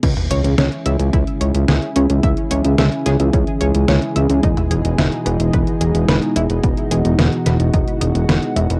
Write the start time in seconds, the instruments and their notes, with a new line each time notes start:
0.03 analog synth bass C#2, analog synth pad C#3 E3 G#3 E4 G#4, synth arpeggio sound C#4, kick, closed hi-hat, crash
0.17 closed hi-hat, mid tom
0.31 analog synth bass C#2, synth arpeggio sound C#5, closed hi-hat
0.44 analog synth bass C#2, closed hi-hat
0.58 analog synth bass C#2, synth arpeggio sound C#4, snare, closed hi-hat
0.72 closed hi-hat
0.86 analog synth bass C#2, synth arpeggio sound E5, closed hi-hat
1.00 analog synth bass C#2, closed hi-hat
1.13 analog synth bass C#2, synth arpeggio sound E4, kick, closed hi-hat
1.27 closed hi-hat
1.41 analog synth bass C#2, synth arpeggio sound C#5, closed hi-hat
1.55 analog synth bass C#2, closed hi-hat
1.68 analog synth bass C#2, synth arpeggio sound G#4, snare, closed hi-hat
1.82 closed hi-hat
1.96 analog synth bass C#2, synth arpeggio sound C#4, closed hi-hat
2.10 analog synth bass C#2, closed hi-hat
2.23 analog synth bass C#2, synth arpeggio sound E5, kick, closed hi-hat
2.37 closed hi-hat
2.51 analog synth bass C#2, synth arpeggio sound C#5, closed hi-hat
2.65 analog synth bass C#2, closed hi-hat
2.78 analog synth bass C#2, synth arpeggio sound E5, snare, closed hi-hat
2.92 closed hi-hat
3.06 analog synth bass C#2, synth arpeggio sound G#4, snare, closed hi-hat
3.20 analog synth bass C#2, closed hi-hat
3.33 analog synth bass C#2, synth arpeggio sound C#4, kick, closed hi-hat
3.47 closed hi-hat
3.61 analog synth bass C#2, synth arpeggio sound C#5, closed hi-hat
3.75 analog synth bass C#2, closed hi-hat
3.88 analog synth bass C#2, synth arpeggio sound C#4, snare, closed hi-hat
4.02 closed hi-hat
4.16 analog synth bass C#2, synth arpeggio sound E5, closed hi-hat
4.30 analog synth bass C#2, closed hi-hat
4.43 analog synth bass E1, analog synth pad B2 D#4, synth arpeggio sound D#4, kick, closed hi-hat
4.57 closed hi-hat, mid tom
4.71 analog synth bass E1, synth arpeggio sound G#4, closed hi-hat
4.85 analog synth bass E1, closed hi-hat
4.98 analog synth bass E1, synth arpeggio sound E4, snare, closed hi-hat
5.12 closed hi-hat
5.26 analog synth bass E1, synth arpeggio sound B3, closed hi-hat
5.40 analog synth bass E1, closed hi-hat
5.53 analog synth bass E1, synth arpeggio sound B4, kick, closed hi-hat
5.67 closed hi-hat
5.81 analog synth bass E1, synth arpeggio sound G#4, closed hi-hat
5.95 analog synth bass E1, closed hi-hat
6.08 analog synth bass E1, synth arpeggio sound B4, snare, closed hi-hat
6.22 closed hi-hat
6.36 analog synth bass E1, synth arpeggio sound E4, closed hi-hat
6.50 analog synth bass E1, closed hi-hat
6.64 analog synth bass E1, synth arpeggio sound B3, analog synth pad F#4, kick, closed hi-hat
6.77 closed hi-hat
6.91 analog synth bass E1, synth arpeggio sound G#4, closed hi-hat
7.05 analog synth bass E1, closed hi-hat
7.19 analog synth bass E1, synth arpeggio sound B3, snare, closed hi-hat
7.32 closed hi-hat
7.46 analog synth bass E1, synth arpeggio sound B4, snare, closed hi-hat
7.60 analog synth bass E1, closed hi-hat
7.74 analog synth bass E1, synth arpeggio sound D#4, kick, closed hi-hat
7.88 closed hi-hat
8.01 analog synth bass E1, synth arpeggio sound D#4, closed hi-hat
8.15 analog synth bass E1, closed hi-hat
8.29 analog synth bass E1, synth arpeggio sound B4, snare, closed hi-hat
8.43 closed hi-hat
8.56 analog synth bass E1, synth arpeggio sound E4, closed hi-hat
8.70 analog synth bass E1, closed hi-hat